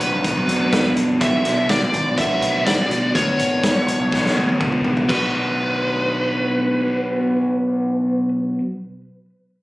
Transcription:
Already playing: B2 F#3 B3 D4 F#4
0.00 B2 F#3 B3 D4 B4, closed hi-hat
0.12 B1
0.23 B2 F#3 B3 D4 F#4, kick, closed hi-hat
0.48 F#2, closed hi-hat
0.72 kick, snare, closed hi-hat
0.84 F#2
0.96 closed hi-hat
1.20 B1 B2 F#3 B3 D4 F#4 E5, kick, closed hi-hat
1.45 B2, snare, closed hi-hat
1.69 D5, kick, snare, closed hi-hat
1.93 G#1, closed hi-hat
2.05 B1
2.17 B2 F#3 B3 D4 F#4 E5, kick, closed hi-hat
2.42 B1, closed hi-hat
2.65 D5, kick, snare, closed hi-hat
2.89 B2, closed hi-hat
3.15 D2 B2 F#3 B3 D4 F#4 C#5, kick, closed hi-hat
3.38 G#1, closed hi-hat
3.63 kick, snare, closed hi-hat
3.87 B1, closed hi-hat
3.99 B1
4.11 B2 F#3 B3 D4 F#4, kick, snare
4.26 snare
4.36 D2, high tom
4.49 high tom
4.60 C#2, kick, mid tom
4.72 mid tom
4.84 B1, floor tom
4.97 floor tom
5.08 B1 B2 F#3 B3 D4 B4, kick, crash
5.12 F#4

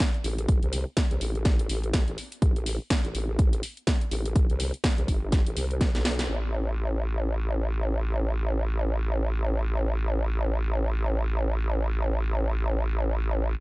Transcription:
0.00 kick, snare, closed hi-hat
0.14 closed hi-hat
0.24 A1, open hi-hat
0.38 closed hi-hat
0.48 A1, kick, closed hi-hat
0.63 C2, closed hi-hat
0.73 open hi-hat
0.97 kick, snare, closed hi-hat
1.11 C2, closed hi-hat
1.21 A1, open hi-hat
1.35 closed hi-hat
1.45 kick, snare, closed hi-hat
1.59 closed hi-hat
1.69 A1, open hi-hat
1.84 closed hi-hat
1.94 kick, snare, closed hi-hat
2.08 A1, closed hi-hat
2.18 open hi-hat
2.32 closed hi-hat
2.42 A1, kick, closed hi-hat
2.56 closed hi-hat
2.66 open hi-hat
2.90 kick, snare, closed hi-hat
3.05 A1, closed hi-hat
3.15 A1, open hi-hat
3.39 kick, closed hi-hat
3.53 closed hi-hat
3.63 open hi-hat
3.77 closed hi-hat
3.87 kick, snare, closed hi-hat
4.01 closed hi-hat
4.11 A1, open hi-hat
4.26 closed hi-hat
4.36 A1, kick, closed hi-hat
4.50 C2, closed hi-hat
4.60 open hi-hat
4.74 closed hi-hat
4.84 kick, snare, closed hi-hat
4.98 C2, closed hi-hat
5.08 G1, kick, open hi-hat
5.32 kick, snare, closed hi-hat
5.46 A1, closed hi-hat
5.57 C2, open hi-hat
5.71 closed hi-hat
5.81 kick, snare, closed hi-hat
5.95 B1, snare, closed hi-hat
6.05 snare, open hi-hat
6.19 snare, closed hi-hat
6.29 A1

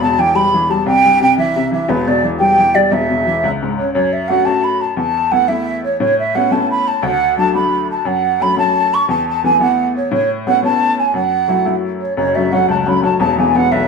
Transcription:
Already playing: E1 E2
0.02 B2 A5
0.19 E3 G5
0.35 G3 B5
0.54 E3
0.70 G3 A5
0.86 C2 G5
1.05 G2
1.21 C3 G5
1.38 E3 E5
1.56 C3
1.72 E3 E5
1.88 E1 E2 B4
2.07 B2 D5
2.23 E3
2.39 G3 G5
2.59 E3
2.75 G3 D5
2.91 E1 E2 E5
3.10 B2
3.27 E3
3.44 C#2
3.63 G#2
3.78 C#3 C#5
3.93 F#2 C#5
4.13 E5
4.28 A3 C#4 F#4 F#5
4.45 A3 C#4 F#4 A5
4.64 B5
4.81 A5
4.97 E2 A5
5.31 A3 B3 E4 F#5
5.48 A3 B3 E4 E5
5.84 C#5
6.00 A2 C#5
6.19 E5
6.35 A3 B3 C#4 F#5
6.51 A3 B3 C#4 A5
6.71 B5
6.87 A5
7.03 D2 F#5
7.37 F#3 A3 D4 A5
7.54 F#3 A3 D4 B5
7.91 A5
8.05 F#2 F#5
8.40 F#3 A3 C#4 B5
8.57 F#3 A3 C#4 A5
8.94 C#6
9.09 E2 A5
9.28 A5
9.44 E3 A3 B3 G#5
9.59 E3 A3 B3 F#5
9.96 C#5
10.11 A2 C#5
10.47 A3 B3 C#4 F#5
10.62 A3 B3 C#4 A5
11.00 G#5
11.14 F#2 F#5
11.48 F#3 A3 E4
11.65 F#3 A3 E4
11.99 C#5
12.16 F#1 F#2 C#5
12.35 F#3 A3 C#4 E5
12.52 F#3 A3 C#4 F#5
12.68 C#2 A5
12.83 F#3 A3 A5
12.87 C#4 B5
13.03 F#3 A3 C#4 A5
13.20 E1 E2 A5
13.38 E3 A3 B3 G#5
13.55 E3 A3 B3 F#5
13.71 B1 E5

